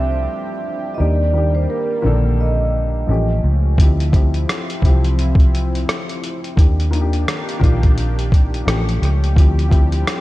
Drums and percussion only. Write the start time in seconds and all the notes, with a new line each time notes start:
3.78 kick, closed hi-hat
4.00 closed hi-hat
4.13 kick, closed hi-hat
4.34 closed hi-hat
4.49 cross-stick, closed hi-hat
4.70 closed hi-hat
4.82 kick, closed hi-hat
5.04 closed hi-hat
5.19 closed hi-hat
5.35 kick
5.40 closed hi-hat
5.55 closed hi-hat
5.75 closed hi-hat
5.89 cross-stick, closed hi-hat
6.09 closed hi-hat
6.24 closed hi-hat
6.44 closed hi-hat
6.57 kick, closed hi-hat
6.80 closed hi-hat
6.93 closed hi-hat
7.13 closed hi-hat
7.28 cross-stick, closed hi-hat
7.49 closed hi-hat
7.61 kick, closed hi-hat
7.83 kick, closed hi-hat
7.98 closed hi-hat
8.19 closed hi-hat
8.32 kick, closed hi-hat
8.54 closed hi-hat
8.68 cross-stick, closed hi-hat
8.89 closed hi-hat
9.03 cross-stick, closed hi-hat
9.24 closed hi-hat
9.36 kick, closed hi-hat
9.59 closed hi-hat
9.71 kick, closed hi-hat
9.92 closed hi-hat
10.07 cross-stick, closed hi-hat